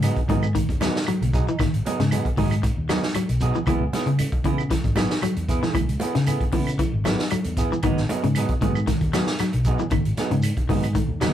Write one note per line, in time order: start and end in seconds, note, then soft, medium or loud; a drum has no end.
0.02 0.19 F#3 medium
0.02 0.19 B3 medium
0.02 0.19 D#4 medium
0.02 0.19 G#4 medium
0.02 closed hi-hat medium
0.02 claves medium
0.02 shekere medium
0.16 kick medium
0.16 closed hi-hat soft
0.28 0.60 G#2 medium
0.28 0.43 D#3 medium
0.28 0.45 F#3 medium
0.28 0.45 B3 medium
0.28 0.45 D#4 medium
0.28 0.45 G#4 medium
0.28 kick medium
0.28 closed hi-hat soft
0.28 high conga medium
0.28 low conga medium
0.28 shekere soft
0.43 claves medium
0.43 shekere medium
0.55 0.68 D#3 medium
0.55 kick medium
0.55 closed hi-hat medium
0.55 shekere medium
0.69 0.89 D#2 medium
0.69 kick medium
0.69 closed hi-hat soft
0.81 0.97 F#3 medium
0.81 0.95 F#3 medium
0.81 0.97 B3 medium
0.81 0.98 D#4 medium
0.81 0.98 G#4 medium
0.81 snare medium
0.81 closed hi-hat soft
0.81 high conga medium
0.81 claves medium
0.81 shekere medium
0.95 snare medium
0.95 shekere soft
1.07 1.21 F#3 medium
1.07 closed hi-hat medium
1.07 high conga medium
1.07 claves medium
1.07 shekere medium
1.21 1.41 B1 medium
1.21 closed hi-hat soft
1.21 low conga medium
1.33 1.47 F#3 medium
1.33 1.47 D#4 medium
1.33 1.47 G#4 medium
1.33 muted clean electric guitar stroke medium
1.33 kick medium
1.33 closed hi-hat soft
1.33 shekere medium
1.48 1.54 E3 medium
1.48 1.63 D#4 soft
1.48 muted clean electric guitar stroke soft
1.48 shekere medium
1.59 1.70 G#1 medium
1.59 1.73 D#3 medium
1.59 kick medium
1.59 snare soft
1.59 closed hi-hat medium
1.59 low conga medium
1.59 claves medium
1.59 shekere medium
1.73 1.82 G#1 medium
1.73 closed hi-hat soft
1.85 2.01 F#3 medium
1.85 2.01 B3 medium
1.85 2.02 D#4 medium
1.85 2.02 G#4 medium
1.85 closed hi-hat medium
1.85 high conga medium
1.85 shekere soft
1.99 2.19 G#2 medium
1.99 2.13 C#3 medium
1.99 snare soft
1.99 closed hi-hat soft
1.99 shekere soft
2.11 2.27 F#3 medium
2.11 2.27 B3 medium
2.11 2.28 D#4 medium
2.11 2.28 G#4 medium
2.11 closed hi-hat medium
2.11 high conga medium
2.11 claves medium
2.11 shekere medium
2.25 kick medium
2.25 closed hi-hat soft
2.37 2.68 G#2 medium
2.37 2.51 D#3 medium
2.37 2.53 F#3 medium
2.37 2.54 D#4 medium
2.37 2.54 G#4 medium
2.37 kick medium
2.37 open hi-hat medium
2.37 high conga medium
2.37 low conga medium
2.37 shekere soft
2.51 closed hi-hat soft
2.51 claves medium
2.51 shekere medium
2.63 muted clean electric guitar stroke medium
2.63 kick medium
2.63 closed hi-hat medium
2.63 shekere medium
2.77 2.97 D#2 medium
2.89 3.03 F#3 medium
2.89 3.05 F#3 medium
2.89 3.06 B3 medium
2.89 3.06 D#4 medium
2.89 3.06 G#4 medium
2.89 snare medium
2.89 closed hi-hat soft
2.89 high conga loud
2.89 claves medium
2.89 shekere medium
3.03 snare medium
3.03 closed hi-hat soft
3.03 shekere soft
3.14 3.29 F#3 medium
3.14 closed hi-hat medium
3.14 high conga medium
3.14 claves medium
3.14 shekere medium
3.29 3.49 B1 medium
3.29 closed hi-hat soft
3.41 3.57 F#3 medium
3.41 3.57 B3 medium
3.41 3.57 D#4 medium
3.41 3.58 G#4 medium
3.41 kick medium
3.41 closed hi-hat soft
3.41 shekere medium
3.55 3.62 E3 medium
3.55 high conga medium
3.55 shekere medium
3.66 3.78 C#2 medium
3.66 3.81 E3 medium
3.66 3.83 B3 medium
3.66 3.83 E4 medium
3.66 3.84 G#4 medium
3.66 kick medium
3.66 closed hi-hat medium
3.66 low conga medium
3.66 claves medium
3.66 shekere medium
3.80 3.90 C#2 medium
3.93 4.09 B3 medium
3.93 4.10 E4 medium
3.93 4.10 G#4 medium
3.93 muted fingered electric bass stroke soft
3.93 snare soft
3.93 closed hi-hat soft
3.93 high conga medium
3.93 shekere soft
4.06 4.26 C#3 medium
4.06 4.20 C#3 medium
4.06 closed hi-hat soft
4.06 shekere soft
4.19 closed hi-hat medium
4.19 high conga medium
4.19 claves medium
4.19 shekere medium
4.32 kick medium
4.32 closed hi-hat soft
4.44 4.75 C#3 medium
4.44 4.59 E3 medium
4.44 4.61 B3 medium
4.44 4.61 E4 medium
4.44 4.62 G#4 medium
4.44 kick medium
4.44 closed hi-hat soft
4.44 high conga medium
4.44 low conga medium
4.44 shekere soft
4.58 claves medium
4.58 shekere medium
4.70 4.84 E3 medium
4.70 kick medium
4.70 snare soft
4.70 closed hi-hat medium
4.70 high conga medium
4.70 shekere medium
4.84 5.05 G#1 medium
4.84 kick medium
4.84 closed hi-hat soft
4.96 5.11 F#3 medium
4.96 5.13 B3 medium
4.96 5.13 E4 medium
4.96 5.14 G#4 medium
4.96 snare medium
4.96 closed hi-hat soft
4.96 high conga medium
4.96 claves medium
4.96 shekere medium
5.10 snare medium
5.10 shekere soft
5.22 5.36 F#3 medium
5.22 closed hi-hat medium
5.22 high conga medium
5.22 claves medium
5.22 shekere medium
5.36 5.57 E2 medium
5.36 closed hi-hat soft
5.48 5.62 B3 medium
5.48 5.62 E4 medium
5.48 5.61 G#4 medium
5.48 kick medium
5.48 closed hi-hat soft
5.48 shekere medium
5.62 5.69 E3 medium
5.62 5.78 E4 soft
5.62 5.77 G#4 medium
5.62 snare soft
5.62 high conga medium
5.62 shekere medium
5.74 5.85 C#2 medium
5.74 5.88 E3 medium
5.74 kick medium
5.74 closed hi-hat medium
5.74 low conga medium
5.74 claves medium
5.74 shekere medium
5.88 5.98 C#2 medium
5.88 closed hi-hat soft
6.00 6.17 B3 medium
6.00 6.18 E4 medium
6.00 6.18 G#4 medium
6.00 closed hi-hat medium
6.00 high conga medium
6.00 shekere soft
6.15 6.28 C#3 medium
6.15 6.35 C#3 medium
6.15 snare soft
6.15 closed hi-hat soft
6.15 shekere soft
6.26 6.43 B3 medium
6.26 6.43 E4 medium
6.26 6.43 G#4 medium
6.26 closed hi-hat medium
6.26 high conga medium
6.26 claves medium
6.26 shekere loud
6.40 kick medium
6.40 closed hi-hat soft
6.52 6.84 C#3 medium
6.52 6.66 E3 medium
6.52 6.69 B3 medium
6.52 6.70 E4 medium
6.52 muted clean electric guitar stroke medium
6.52 kick medium
6.52 open hi-hat medium
6.52 high conga medium
6.52 low conga medium
6.52 shekere soft
6.67 closed hi-hat soft
6.67 claves medium
6.67 shekere medium
6.79 6.93 E3 medium
6.79 kick medium
6.79 closed hi-hat medium
6.79 high conga medium
6.79 shekere medium
6.94 7.13 G#1 medium
7.05 7.19 F#3 medium
7.05 7.22 B3 medium
7.05 7.22 E4 medium
7.05 7.22 G#4 medium
7.05 snare medium
7.05 closed hi-hat soft
7.05 high conga loud
7.05 claves medium
7.05 shekere medium
7.19 snare medium
7.19 closed hi-hat soft
7.19 shekere soft
7.30 7.45 F#3 medium
7.30 closed hi-hat medium
7.30 high conga medium
7.30 claves medium
7.30 shekere medium
7.44 7.65 E2 medium
7.44 closed hi-hat soft
7.57 7.73 B3 medium
7.57 7.74 E4 medium
7.57 7.74 G#4 medium
7.57 kick medium
7.57 closed hi-hat soft
7.57 shekere medium
7.72 7.78 E3 medium
7.72 high conga medium
7.72 shekere medium
7.83 7.94 G#1 medium
7.83 7.97 D#3 medium
7.83 8.00 F#3 medium
7.83 8.00 B3 medium
7.83 8.00 D#4 loud
7.83 muted clean electric guitar stroke medium
7.83 kick medium
7.83 closed hi-hat medium
7.83 low conga medium
7.83 claves medium
7.83 shekere medium
7.97 8.07 G#1 medium
7.97 snare soft
8.09 8.26 F#3 medium
8.09 8.26 B3 medium
8.09 8.26 D#4 medium
8.09 8.26 G#4 medium
8.09 closed hi-hat medium
8.09 high conga medium
8.09 shekere soft
8.23 8.43 G#2 medium
8.23 8.37 C#3 medium
8.23 closed hi-hat soft
8.23 shekere soft
8.35 8.52 F#3 medium
8.35 8.52 B3 medium
8.35 8.53 D#4 medium
8.35 8.53 G#4 medium
8.35 closed hi-hat medium
8.35 claves medium
8.35 shekere medium
8.49 kick medium
8.49 closed hi-hat soft
8.61 8.92 G#2 medium
8.61 8.75 D#3 medium
8.61 8.78 F#3 medium
8.61 8.78 B3 medium
8.61 8.79 G#4 medium
8.61 kick medium
8.61 closed hi-hat medium
8.61 high conga medium
8.61 low conga medium
8.61 shekere soft
8.75 claves medium
8.75 shekere medium
8.87 9.01 D#3 medium
8.87 kick medium
8.87 snare soft
8.87 closed hi-hat medium
8.87 high conga medium
8.87 shekere medium
9.01 9.21 D#2 medium
9.01 kick medium
9.01 closed hi-hat soft
9.13 9.27 F#3 medium
9.13 9.30 F#3 medium
9.13 9.30 B3 medium
9.13 9.30 G#4 medium
9.13 snare medium
9.13 closed hi-hat soft
9.13 high conga medium
9.13 claves medium
9.13 shekere medium
9.27 snare medium
9.27 shekere soft
9.38 9.53 F#3 medium
9.38 snare soft
9.38 closed hi-hat medium
9.38 high conga medium
9.38 claves medium
9.38 shekere medium
9.53 9.74 B1 medium
9.53 closed hi-hat soft
9.65 9.82 F#3 medium
9.65 9.82 B3 medium
9.65 9.82 D#4 medium
9.65 9.82 G#4 medium
9.65 kick medium
9.65 closed hi-hat soft
9.65 shekere loud
9.79 9.86 E3 medium
9.79 high conga medium
9.79 shekere medium
9.91 10.02 G#1 medium
9.91 10.05 D#3 medium
9.91 kick medium
9.91 closed hi-hat medium
9.91 low conga medium
9.91 claves medium
9.91 shekere medium
10.05 10.15 G#1 medium
10.05 closed hi-hat soft
10.17 10.34 F#3 medium
10.17 10.34 B3 medium
10.17 10.34 D#4 medium
10.17 10.34 G#4 medium
10.17 muted fingered electric bass stroke soft
10.17 snare soft
10.17 closed hi-hat soft
10.17 high conga medium
10.17 shekere soft
10.31 10.51 G#2 medium
10.31 10.45 C#3 medium
10.31 closed hi-hat soft
10.31 shekere soft
10.42 closed hi-hat medium
10.42 claves medium
10.42 shekere medium
10.57 kick medium
10.57 closed hi-hat soft
10.69 11.00 G#2 medium
10.69 10.83 D#3 medium
10.69 10.85 F#3 medium
10.69 10.86 B3 medium
10.69 10.86 D#4 medium
10.69 10.86 G#4 medium
10.69 kick medium
10.69 open hi-hat medium
10.69 high conga medium
10.69 low conga medium
10.69 shekere soft
10.83 closed hi-hat soft
10.83 claves medium
10.83 shekere medium
10.95 11.08 D#3 medium
10.95 kick medium
10.95 closed hi-hat medium
10.95 high conga medium
10.95 shekere medium
11.08 11.29 D#2 medium
11.21 11.33 F#3 medium
11.21 11.33 B3 medium
11.21 11.33 D#4 medium
11.21 11.33 G#4 medium
11.21 snare medium
11.21 closed hi-hat soft
11.21 low conga loud
11.21 claves medium
11.21 shekere medium